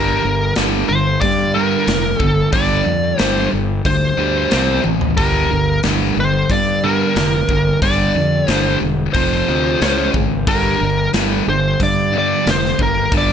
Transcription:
Already playing: G1 G2 D3 G3 A#4
0.23 G1 G2 D3
0.56 G1 G2 D3 G3, snare, open hi-hat
0.88 G1 G2 D3 C5
1.21 G2 D3 D5, kick, open hi-hat
1.54 G2 D3 G3 A#4
1.86 F1 G2 D3, snare, open hi-hat
1.91 G2 D3
2.18 G1 G2 D3 A4, kick
2.52 G1 G2 D3 G3 D5, kick, open hi-hat
2.85 F2 G2 D3
3.18 G1 G2 D3 G3 C5, snare, open hi-hat
3.51 G1 G2 D3
3.85 D2 G2 D3 C5, kick, open hi-hat
4.17 D2 G2 D3 G3
4.51 C2 C3 G3 C4, snare, open hi-hat
4.84 A1 C3 G3, high tom
5.01 floor tom
5.17 G1 G2 D3 G3 A#4, kick, open hi-hat
5.51 G1 G2 D3
5.83 G1 G2 D3 G3, snare, open hi-hat
6.17 G1 G2 D3 C5
6.49 G2 D3 D5, kick, open hi-hat
6.84 G2 D3 G3 A#4
7.16 F1 G2 D3, snare, open hi-hat
7.49 G1 G2 D3, kick
7.82 G1 G2 D3 G3 D5, kick, open hi-hat
8.15 F2 G2 D3
8.47 G1 G2 D3 G3 C5, snare, open hi-hat
8.81 E1 G2 D3
9.13 F1 F2 C3 F3 C5, kick, open hi-hat
9.48 D2 F2 C3 F3
9.81 C#2 C#3 G#3 C#4, snare, open hi-hat
10.14 G#1 C#3 G#3, kick
10.47 G1 G2 D3 G3 A#4, kick, open hi-hat
10.80 G1 G2 D3
11.13 G1 G2 D3 G3, snare, open hi-hat
11.47 G1 G2 D3 C5
11.80 G2 D3 D5, kick, open hi-hat
12.12 G2 D3 G3
12.18 D5
12.45 F1 G2 D3, snare, open hi-hat
12.50 C5
12.65 snare
12.78 G1 G2 D3, kick
12.83 A#4
13.12 G1 G2 D3 G3, kick, open hi-hat
13.18 D5

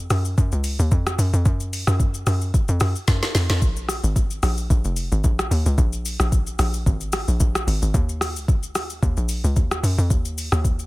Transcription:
0.10 F#2, cross-stick, open hi-hat, shaker
0.25 shaker
0.38 F#2, kick, shaker
0.52 C#2, shaker
0.64 open hi-hat, shaker
0.79 D#2, shaker
0.91 F2, kick, shaker
1.07 cross-stick, shaker
1.18 F#2, open hi-hat, shaker
1.33 F2, shaker
1.46 F#2, kick, shaker
1.60 shaker
1.73 open hi-hat, shaker
1.87 F#2, cross-stick, shaker
2.00 kick, shaker
2.14 shaker
2.27 F#2, cross-stick, open hi-hat, shaker
2.41 shaker
2.54 kick, shaker
2.68 F2, shaker
2.80 F#2, cross-stick, open hi-hat, shaker
2.96 shaker
3.08 F#2, kick, snare, shaker
3.23 snare, shaker
3.35 F2, snare, open hi-hat, shaker
3.50 F2, snare, shaker
3.62 A#1, kick, shaker
3.76 shaker
3.89 cross-stick, open hi-hat, shaker
4.04 G#1, shaker
4.16 kick, shaker
4.31 shaker
4.43 A#1, cross-stick, open hi-hat, shaker
4.58 shaker
4.70 A#1, kick, shaker
4.85 F1, shaker
4.96 open hi-hat, shaker
5.12 G#1, shaker
5.24 A#1, kick, shaker
5.39 cross-stick, shaker
5.51 D#2, open hi-hat, shaker
5.66 C#2, shaker
5.78 A#1, kick, shaker
5.93 shaker
6.06 open hi-hat, shaker
6.20 A#1, cross-stick, shaker
6.32 kick, shaker
6.47 shaker
6.59 A#1, cross-stick, open hi-hat, shaker
6.74 shaker
6.86 G#1, kick, shaker
7.01 shaker
7.13 cross-stick, open hi-hat, shaker
7.28 A#1, shaker
7.40 A#1, kick, shaker
7.55 cross-stick, shaker
7.67 G#1, open hi-hat, shaker
7.82 G#1, shaker
7.94 D#2, kick, shaker
8.09 shaker
8.21 cross-stick, open hi-hat, shaker
8.36 C#2, shaker
8.48 kick, shaker
8.63 shaker
8.75 D#2, cross-stick, open hi-hat, shaker
8.90 shaker
9.03 D#2, kick, shaker
9.17 A#1, shaker
9.29 open hi-hat, shaker
9.44 C#2, shaker
9.56 D#2, kick, shaker
9.71 cross-stick, shaker
9.83 F#2, open hi-hat, shaker
9.98 F2, shaker
10.10 D#2, kick, shaker
10.25 shaker
10.38 open hi-hat, shaker
10.52 D#2, cross-stick, shaker
10.65 kick, shaker
10.79 shaker

